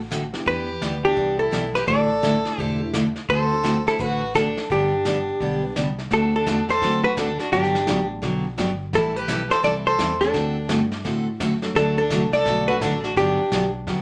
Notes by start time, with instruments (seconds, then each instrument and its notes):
Already playing: picked electric bass A1
0.11 steel-string acoustic guitar D3 A3 C4 F#4 A4, snare, hi-hat pedal
0.33 upright piano G3 B3 D4 E4 G4, snare
0.46 picked electric bass E2, steel-string acoustic guitar E3 B3 D4 G4, fiddle G4, hollow-body jazz guitar B4, brush sweep, kick
0.81 picked electric bass D2, steel-string acoustic guitar E3 B3 D4 G4, snare, hi-hat pedal
1.03 upright piano G3 B3 D4 E4 G4, fiddle D4, hollow-body jazz guitar G4
1.16 picked electric bass C2, steel-string acoustic guitar E3 B3 D4 G4, brush sweep, kick
1.39 fiddle E4, hollow-body jazz guitar A4
1.51 picked electric bass B1, steel-string acoustic guitar E3 B3 D4 G4, snare, hi-hat pedal
1.75 fiddle G4, hollow-body jazz guitar B4, snare
1.87 picked electric bass A1, steel-string acoustic guitar D3 A3 D4 E4 A4, fiddle A4, hollow-body jazz guitar D5, brush sweep, kick
2.22 steel-string acoustic guitar D3 A3 D4 E4 A4, snare, hi-hat pedal
2.44 upright piano E3 A3 D4 E4 A4, snare
2.58 picked electric bass E1, steel-string acoustic guitar D3 A3 D4 E4 A4, fiddle G4, hollow-body jazz guitar C5, brush sweep, kick
2.80 upright piano E3 A3 D4 E4 A4
2.93 steel-string acoustic guitar D3 A3 D4 E4 A4, snare, hi-hat pedal
3.16 snare
3.29 picked electric bass D2, steel-string acoustic guitar D3 A3 C4 F#4 A4, fiddle A4, hollow-body jazz guitar C5, brush sweep, kick
3.51 upright piano A3 C4 D4 F#4 A4
3.63 steel-string acoustic guitar D3 A3 C4 F#4 A4, snare, hi-hat pedal
3.86 upright piano A3 C4 D4 F#4 C5, fiddle E4, hollow-body jazz guitar A4, snare
3.99 picked electric bass A1, steel-string acoustic guitar D3 A3 C4 F#4 A4, fiddle F#4, hollow-body jazz guitar B4, brush sweep, kick
4.34 steel-string acoustic guitar D3 A3 C4 F#4 A4, fiddle D4, hollow-body jazz guitar A4, snare, hi-hat pedal
4.57 snare
4.70 picked electric bass G1, steel-string acoustic guitar D3 G3 B3 D4 G4, fiddle D4, hollow-body jazz guitar G4, brush sweep, kick
5.05 steel-string acoustic guitar D3 G3 B3 D4 G4, snare, hi-hat pedal
5.40 picked electric bass B1, steel-string acoustic guitar D3 G3 B3 D4 G4, brush sweep, kick
5.63 upright piano G3 B3 D4 G4 B4
5.76 picked electric bass C2, steel-string acoustic guitar D3 G3 B3 D4 G4, snare, hi-hat pedal
5.98 snare
6.10 picked electric bass D2, steel-string acoustic guitar D3 A3 C4 F#4 A4, upright piano A3 C4 D4 F#4 A4, fiddle D4, hollow-body jazz guitar A4, brush sweep, kick, snare
6.35 fiddle D4, hollow-body jazz guitar A4
6.46 picked electric bass E2, steel-string acoustic guitar D3 A3 C4 F#4 A4, kick, snare, hi-hat pedal
6.69 fiddle A4, hollow-body jazz guitar C5, snare
6.81 picked electric bass F#2, steel-string acoustic guitar D3 A3 C4 F#4 A4, upright piano A3 C4 D4 F#4 A4, brush sweep, kick, snare
7.04 fiddle F#4, hollow-body jazz guitar B4
7.17 picked electric bass D2, steel-string acoustic guitar D3 A3 C4 F#4 A4, fiddle D4, hollow-body jazz guitar A4, kick, snare, hi-hat pedal
7.39 fiddle D4, hollow-body jazz guitar F#4, snare
7.52 picked electric bass G1, steel-string acoustic guitar D3 F#3 B3 D4 G4, upright piano G3 B3 D4 G4 F#5, fiddle D4, hollow-body jazz guitar G4, brush sweep, kick, snare
7.63 snare
7.75 snare
7.87 picked electric bass A1, steel-string acoustic guitar D3 F#3 B3 D4 G4, kick, snare, hi-hat pedal
8.22 picked electric bass B1, steel-string acoustic guitar D3 F#3 B3 D4 G4, brush sweep, kick, snare
8.58 picked electric bass G1, steel-string acoustic guitar D3 F#3 B3 D4 G4, kick, snare, hi-hat pedal
8.93 picked electric bass A1, steel-string acoustic guitar E3 G3 C4 E4 A4, fiddle E4, hollow-body jazz guitar A4, brush sweep, kick, snare
9.16 fiddle G4, hollow-body jazz guitar B4
9.28 picked electric bass B1, steel-string acoustic guitar E3 G3 C4 E4 A4, kick, snare, hi-hat pedal
9.50 fiddle A4, hollow-body jazz guitar C5, muted picked electric bass stroke, snare
9.63 picked electric bass C2, steel-string acoustic guitar E3 G3 C4 E4 A4, fiddle A4, hollow-body jazz guitar D5, brush sweep, kick, snare
9.85 fiddle A4, hollow-body jazz guitar C5
9.99 picked electric bass E2, steel-string acoustic guitar E3 G3 C4 E4 A4, kick, snare, hi-hat pedal
10.20 upright piano A3 C4 D4 F#4 A4, fiddle D4, hollow-body jazz guitar A4, snare
10.34 picked electric bass D2, steel-string acoustic guitar D3 A3 C4 F#4 A4, brush sweep, kick, snare
10.69 picked electric bass G2, steel-string acoustic guitar D3 A3 C4 F#4 A4, kick, snare, hi-hat pedal
10.91 snare
11.04 picked electric bass A2, steel-string acoustic guitar D3 A3 C4 F#4 A4, brush sweep, kick, snare
11.40 picked electric bass F#2, steel-string acoustic guitar D3 A3 C4 F#4 A4, kick, snare, hi-hat pedal
11.62 upright piano F#3 A3 D4 F#4 A4, snare
11.75 picked electric bass D2, steel-string acoustic guitar D3 F#3 A3 D4 F#4, fiddle D4, hollow-body jazz guitar A4, brush sweep, kick, snare
11.98 fiddle D4, hollow-body jazz guitar A4
12.10 picked electric bass C2, steel-string acoustic guitar D3 F#3 A3 D4 F#4, kick, snare, hi-hat pedal
12.33 fiddle A4, hollow-body jazz guitar D5, snare
12.45 picked electric bass B1, steel-string acoustic guitar D3 F#3 A3 D4 F#4, brush sweep, kick, snare
12.68 upright piano F#3 A3 D4 F#4 A4, fiddle F#4, hollow-body jazz guitar B4
12.81 picked electric bass A1, steel-string acoustic guitar D3 F#3 A3 D4 F#4, fiddle D4, hollow-body jazz guitar A4, kick, snare, hi-hat pedal
13.02 fiddle D4, hollow-body jazz guitar F#4, snare
13.16 picked electric bass G1, steel-string acoustic guitar D3 F#3 B3 D4 G4, fiddle D4, hollow-body jazz guitar G4, brush sweep, kick, snare
13.39 muted picked electric bass stroke
13.52 picked electric bass B1, steel-string acoustic guitar D3 F#3 B3 D4 G4, kick, snare, hi-hat pedal
13.87 picked electric bass F#2, steel-string acoustic guitar D3 F#3 B3 D4 G4, brush sweep, kick, snare